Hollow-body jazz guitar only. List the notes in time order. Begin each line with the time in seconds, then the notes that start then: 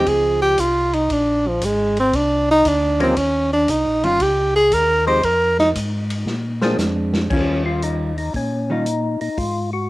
Already playing: F3 C4 D#4 G#4
3.00 D#3 G3 C#4 F4
4.04 D#3 G3 C#4 F4
6.62 G#3 C4 D4
7.31 D#3 G3 C#4 F4
8.70 D#3 G3 C#4 F4